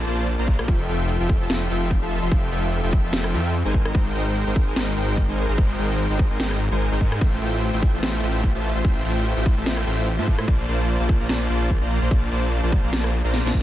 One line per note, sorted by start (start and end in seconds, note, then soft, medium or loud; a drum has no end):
0.07 0.36 A#1 loud
0.07 0.27 A#3 medium
0.07 0.27 F4 medium
0.07 0.27 C5 medium
0.07 0.27 D5 medium
0.07 0.27 A5 loud
0.07 closed hi-hat medium
0.27 closed hi-hat medium
0.38 0.57 A#1 loud
0.38 0.56 A#3 medium
0.38 0.56 F4 medium
0.38 0.56 C5 medium
0.38 0.56 D5 medium
0.38 0.56 A#5 medium
0.48 kick medium
0.48 closed hi-hat medium
0.53 closed hi-hat medium
0.59 0.66 A#1 loud
0.59 0.66 A#3 medium
0.59 0.66 F4 medium
0.59 0.66 C5 medium
0.59 0.66 D5 medium
0.59 0.66 C6 medium
0.59 cross-stick medium
0.59 closed hi-hat medium
0.64 closed hi-hat medium
0.68 0.87 F1 loud
0.68 0.86 F3 medium
0.68 0.86 F4 medium
0.68 0.86 A4 medium
0.68 0.86 E5 medium
0.68 0.86 G5 loud
0.68 kick loud
0.68 closed hi-hat medium
0.89 1.18 F1 loud
0.89 1.18 F3 medium
0.89 1.18 F4 medium
0.89 1.17 A4 medium
0.89 1.18 E5 medium
0.89 1.17 G5 medium
0.89 closed hi-hat medium
1.09 closed hi-hat medium
1.20 1.38 F1 loud
1.20 1.38 F3 medium
1.20 1.38 F4 medium
1.20 1.38 A4 medium
1.20 1.38 E5 medium
1.20 1.38 G5 medium
1.29 kick loud
1.29 closed hi-hat medium
1.40 1.48 F1 medium
1.40 1.48 F3 medium
1.40 1.48 F4 medium
1.40 1.48 A4 medium
1.40 1.48 E5 medium
1.40 1.48 A5 medium
1.50 1.68 F1 loud
1.50 1.68 F3 medium
1.50 1.68 F4 medium
1.50 1.68 A4 medium
1.50 1.68 E5 medium
1.50 1.68 G5 medium
1.50 snare loud
1.50 closed hi-hat medium
1.70 2.00 F1 loud
1.70 1.91 F3 loud
1.70 1.91 F4 medium
1.70 1.91 A4 medium
1.70 1.91 E5 medium
1.70 1.91 G5 loud
1.70 closed hi-hat medium
1.91 kick medium
1.91 closed hi-hat medium
2.02 2.20 F1 medium
2.02 2.20 F3 medium
2.02 2.20 F4 medium
2.02 2.20 A4 medium
2.02 2.20 E5 medium
2.02 2.20 A5 medium
2.11 closed hi-hat medium
2.22 2.30 F1 loud
2.22 2.29 F3 medium
2.22 2.29 F4 medium
2.22 2.29 A4 medium
2.22 2.29 E5 medium
2.22 2.29 C6 medium
2.31 2.50 F1 loud
2.31 2.50 F3 loud
2.31 2.50 F4 medium
2.31 2.50 A4 medium
2.31 2.50 E5 medium
2.31 2.50 G5 loud
2.31 kick loud
2.31 closed hi-hat medium
2.52 2.81 F1 loud
2.52 2.81 F3 medium
2.52 2.81 F4 medium
2.52 2.81 A4 medium
2.52 2.81 E5 medium
2.52 2.81 G5 medium
2.52 closed hi-hat medium
2.72 closed hi-hat medium
2.83 3.02 F1 loud
2.83 3.01 F3 medium
2.83 3.01 F4 medium
2.83 3.01 A4 medium
2.83 3.01 E5 medium
2.83 3.01 G5 loud
2.93 kick loud
2.93 closed hi-hat medium
3.04 3.11 F1 loud
3.04 3.11 F3 medium
3.04 3.11 F4 medium
3.04 3.11 A4 medium
3.04 3.11 E5 medium
3.04 3.11 A5 medium
3.13 3.35 F1 loud
3.13 3.31 F3 medium
3.13 3.31 F4 medium
3.13 3.31 A4 medium
3.13 3.31 E5 medium
3.13 3.31 G5 medium
3.13 snare loud
3.13 closed hi-hat medium
3.24 cross-stick medium
3.33 3.63 F2 loud
3.33 3.54 F3 loud
3.33 3.54 F4 medium
3.33 3.54 A4 medium
3.33 3.54 E5 medium
3.33 3.54 G5 loud
3.33 closed hi-hat medium
3.54 closed hi-hat medium
3.65 3.83 G#1 medium
3.65 3.83 G#3 medium
3.65 3.83 D#4 medium
3.65 3.83 A#4 medium
3.65 3.83 C5 medium
3.65 3.83 G#5 medium
3.74 kick medium
3.74 closed hi-hat medium
3.85 3.93 G#1 loud
3.85 3.92 G#3 medium
3.85 3.92 D#4 medium
3.85 3.92 A#4 medium
3.85 3.92 C5 medium
3.85 3.92 A#5 medium
3.85 cross-stick medium
3.95 4.13 G#1 loud
3.95 4.13 G#3 medium
3.95 4.13 D#4 medium
3.95 4.13 A#4 medium
3.95 4.13 C5 medium
3.95 4.13 G5 loud
3.95 kick loud
3.95 closed hi-hat medium
4.15 4.44 G#1 medium
4.15 4.44 G#3 medium
4.15 4.44 D#4 medium
4.15 4.44 A#4 medium
4.15 4.44 C5 medium
4.15 4.44 G5 medium
4.15 closed hi-hat medium
4.36 closed hi-hat medium
4.47 4.65 G#1 loud
4.47 4.64 G#3 medium
4.47 4.64 D#4 medium
4.47 4.64 A#4 medium
4.47 4.64 C5 medium
4.47 4.64 G5 loud
4.56 kick loud
4.56 closed hi-hat medium
4.67 4.74 G#1 loud
4.67 4.74 G#3 medium
4.67 4.74 D#4 medium
4.67 4.74 A#4 medium
4.67 4.74 C5 medium
4.67 4.74 G#5 medium
4.76 4.95 G#1 loud
4.76 4.95 G#3 medium
4.76 4.95 D#4 medium
4.76 4.95 A#4 medium
4.76 4.95 C5 medium
4.76 4.94 G5 medium
4.76 snare loud
4.76 closed hi-hat medium
4.96 5.26 G#1 loud
4.96 5.17 G#3 loud
4.96 5.17 D#4 medium
4.96 5.17 A#4 medium
4.96 5.17 C5 medium
4.96 5.17 G5 loud
4.96 closed hi-hat medium
5.17 kick medium
5.17 closed hi-hat medium
5.28 5.46 G#1 loud
5.28 5.46 G#3 medium
5.28 5.46 D#4 medium
5.28 5.46 A#4 medium
5.28 5.46 C5 medium
5.28 5.46 G#5 medium
5.37 closed hi-hat medium
5.49 5.56 G#1 loud
5.49 5.56 G#3 medium
5.49 5.56 D#4 medium
5.49 5.56 A#4 medium
5.49 5.56 C5 medium
5.49 5.56 A#5 medium
5.58 5.77 G#1 loud
5.58 5.76 G#3 medium
5.58 5.76 D#4 medium
5.58 5.76 A#4 medium
5.58 5.76 C5 medium
5.58 5.76 G5 loud
5.58 kick loud
5.58 closed hi-hat medium
5.78 6.08 G#1 loud
5.78 6.07 G#3 medium
5.78 6.07 D#4 medium
5.78 6.07 A#4 medium
5.78 6.07 C5 medium
5.78 6.07 G5 medium
5.78 closed hi-hat medium
5.99 closed hi-hat medium
6.10 6.28 G#1 loud
6.10 6.28 G#3 medium
6.10 6.28 D#4 medium
6.10 6.28 A#4 medium
6.10 6.28 C5 medium
6.10 6.28 G5 loud
6.19 kick loud
6.19 closed hi-hat medium
6.30 6.38 G#1 loud
6.30 6.37 G#3 medium
6.30 6.37 D#4 medium
6.30 6.37 A#4 medium
6.30 6.37 C5 medium
6.30 6.37 G#5 medium
6.40 6.69 G#1 loud
6.40 6.58 G#3 medium
6.40 6.58 D#4 medium
6.40 6.58 A#4 medium
6.40 6.58 C5 medium
6.40 6.58 G5 medium
6.40 snare loud
6.40 closed hi-hat medium
6.51 cross-stick medium
6.60 closed hi-hat medium
6.71 6.89 G#1 medium
6.71 6.89 G#3 medium
6.71 6.89 D#4 medium
6.71 6.89 A#4 medium
6.71 6.89 C5 medium
6.71 6.89 G#5 medium
6.81 closed hi-hat medium
6.91 6.99 G#1 loud
6.91 6.99 G#3 loud
6.91 6.99 D#4 medium
6.91 6.99 A#4 medium
6.91 6.99 C5 medium
6.91 6.99 G5 loud
7.01 7.19 G#2 loud
7.01 7.19 G#3 loud
7.01 7.19 D#4 medium
7.01 7.19 A#4 medium
7.01 7.19 C5 medium
7.01 7.19 G#5 loud
7.01 kick medium
7.01 closed hi-hat medium
7.12 cross-stick medium
7.21 7.40 A1 loud
7.21 7.39 A3 medium
7.21 7.39 F4 medium
7.21 7.39 C5 medium
7.21 7.40 E5 medium
7.21 7.39 G5 loud
7.21 kick loud
7.21 closed hi-hat medium
7.42 7.71 A1 loud
7.42 7.71 A3 medium
7.42 7.71 F4 medium
7.42 7.71 C5 medium
7.42 7.71 E5 medium
7.42 7.71 G5 medium
7.42 closed hi-hat medium
7.62 closed hi-hat medium
7.73 7.91 A1 loud
7.73 7.91 A3 medium
7.73 7.91 F4 medium
7.73 7.91 C5 medium
7.73 7.91 E5 medium
7.73 7.91 G5 loud
7.83 kick loud
7.83 closed hi-hat medium
7.94 8.01 A1 loud
7.94 8.01 A3 medium
7.94 8.01 F4 medium
7.94 8.01 C5 medium
7.94 8.01 E5 medium
7.94 8.01 A5 medium
8.03 8.21 A1 loud
8.03 8.21 A3 medium
8.03 8.21 F4 medium
8.03 8.21 C5 medium
8.03 8.21 E5 medium
8.03 8.21 G5 medium
8.03 snare loud
8.03 closed hi-hat medium
8.23 8.52 A1 loud
8.23 8.44 A3 loud
8.23 8.44 F4 medium
8.23 8.44 C5 medium
8.23 8.44 E5 medium
8.23 8.44 G5 loud
8.23 closed hi-hat medium
8.44 kick medium
8.44 closed hi-hat medium
8.55 8.73 A1 loud
8.55 8.73 A3 medium
8.55 8.73 F4 medium
8.55 8.73 C5 medium
8.55 8.73 E5 medium
8.55 8.73 A5 medium
8.64 closed hi-hat medium
8.75 8.83 A1 medium
8.75 8.82 A3 medium
8.75 8.82 F4 medium
8.75 8.82 C5 medium
8.75 8.82 E5 medium
8.75 8.82 C6 medium
8.84 9.03 A1 loud
8.84 9.03 A3 medium
8.84 9.03 F4 medium
8.84 9.03 C5 medium
8.84 9.03 E5 medium
8.84 9.03 G5 loud
8.84 kick loud
8.84 closed hi-hat medium
9.05 9.34 A1 loud
9.05 9.34 A3 medium
9.05 9.34 F4 medium
9.05 9.34 C5 medium
9.05 9.34 E5 medium
9.05 9.34 G5 medium
9.05 closed hi-hat medium
9.25 closed hi-hat medium
9.36 9.55 A1 loud
9.36 9.54 A3 medium
9.36 9.54 F4 medium
9.36 9.54 C5 medium
9.36 9.54 E5 medium
9.36 9.54 G5 loud
9.46 kick loud
9.46 closed hi-hat medium
9.57 9.64 A1 loud
9.57 9.64 A3 medium
9.57 9.64 F4 medium
9.57 9.64 C5 medium
9.57 9.64 E5 medium
9.57 9.64 A5 medium
9.66 9.85 A1 loud
9.66 9.84 A3 medium
9.66 9.84 F4 medium
9.66 9.84 C5 medium
9.66 9.84 E5 medium
9.66 9.84 G5 medium
9.66 snare loud
9.66 closed hi-hat medium
9.77 cross-stick medium
9.86 10.20 A1 loud
9.86 10.07 A3 medium
9.86 10.07 F4 medium
9.86 10.07 C5 medium
9.86 10.07 E5 medium
9.86 10.07 G5 loud
9.86 closed hi-hat medium
10.07 closed hi-hat medium
10.18 10.36 A2 medium
10.18 10.36 A3 medium
10.18 10.36 F4 medium
10.18 10.36 C5 medium
10.18 10.36 E5 medium
10.18 10.36 A5 medium
10.27 kick medium
10.27 closed hi-hat medium
10.39 10.46 A2 loud
10.39 10.46 A3 medium
10.39 10.46 F4 medium
10.39 10.46 C5 medium
10.39 10.46 E5 medium
10.39 10.46 C6 medium
10.39 cross-stick medium
10.48 10.66 A#1 loud
10.48 10.66 A#3 medium
10.48 10.66 F4 medium
10.48 10.66 C5 medium
10.48 10.66 D5 medium
10.48 10.66 A5 loud
10.48 kick loud
10.48 closed hi-hat medium
10.68 10.98 A#1 loud
10.68 10.97 A#3 medium
10.68 10.97 F4 medium
10.68 10.97 C5 medium
10.68 10.97 D5 medium
10.68 10.97 A5 medium
10.68 closed hi-hat medium
10.88 closed hi-hat medium
11.00 11.18 A#1 loud
11.00 11.17 A#3 medium
11.00 11.17 F4 medium
11.00 11.17 C5 medium
11.00 11.17 D5 medium
11.00 11.17 A5 loud
11.09 kick loud
11.09 closed hi-hat medium
11.20 11.28 A#1 loud
11.20 11.27 A#3 medium
11.20 11.27 F4 medium
11.20 11.27 C5 medium
11.20 11.27 D5 medium
11.20 11.27 A#5 medium
11.29 11.48 A#1 loud
11.29 11.48 A#3 medium
11.29 11.48 F4 medium
11.29 11.48 C5 medium
11.29 11.48 D5 medium
11.29 11.48 A5 medium
11.29 snare loud
11.29 closed hi-hat medium
11.50 11.79 A#1 loud
11.50 11.70 A#3 loud
11.50 11.70 F4 medium
11.50 11.70 C5 medium
11.50 11.70 D5 medium
11.50 11.70 A5 loud
11.50 closed hi-hat medium
11.70 kick medium
11.70 closed hi-hat medium
11.81 12.00 A#1 medium
11.81 11.99 A#3 medium
11.81 11.99 F4 medium
11.81 11.99 C5 medium
11.81 11.99 D5 medium
11.81 11.99 A#5 medium
11.91 closed hi-hat medium
12.02 12.09 A#1 loud
12.02 12.09 A#3 medium
12.02 12.09 F4 medium
12.02 12.09 C5 medium
12.02 12.09 D5 medium
12.02 12.09 C6 medium
12.11 12.30 A#1 loud
12.11 12.29 A#3 medium
12.11 12.29 F4 medium
12.11 12.29 C5 medium
12.11 12.29 D5 medium
12.11 12.29 A5 loud
12.11 kick loud
12.11 closed hi-hat medium
12.31 12.61 A#1 loud
12.31 12.60 A#3 medium
12.31 12.60 F4 medium
12.31 12.60 C5 medium
12.31 12.60 D5 medium
12.31 12.60 A5 medium
12.31 closed hi-hat medium
12.52 closed hi-hat medium
12.63 12.81 A#1 loud
12.63 12.81 A#3 medium
12.63 12.81 F4 medium
12.63 12.81 C5 medium
12.63 12.81 D5 medium
12.63 12.81 A5 loud
12.72 kick loud
12.72 closed hi-hat medium
12.83 12.91 A#1 loud
12.83 12.91 A#3 medium
12.83 12.91 F4 medium
12.83 12.91 C5 medium
12.83 12.91 D5 medium
12.83 12.91 A#5 medium
12.93 13.22 A#1 loud
12.93 13.11 A#3 medium
12.93 13.11 F4 medium
12.93 13.11 C5 medium
12.93 13.11 D5 medium
12.93 13.11 A5 medium
12.93 snare loud
12.93 closed hi-hat medium
13.04 cross-stick medium
13.13 closed hi-hat medium
13.24 13.42 A#1 loud
13.24 13.42 A#3 medium
13.24 13.42 F4 medium
13.24 13.42 C5 medium
13.24 13.42 D5 medium
13.24 13.42 A#5 medium
13.34 snare medium
13.34 closed hi-hat medium
13.45 13.52 A#1 loud
13.45 13.52 A#3 loud
13.45 13.52 F4 medium
13.45 13.52 C5 medium
13.45 13.52 D5 medium
13.45 13.52 A5 loud
13.45 snare medium
13.54 13.62 A#1 loud
13.54 13.62 A#3 loud
13.54 13.62 F4 medium
13.54 13.62 C5 medium
13.54 13.62 D5 medium
13.54 13.62 A#5 loud
13.54 kick medium
13.54 closed hi-hat medium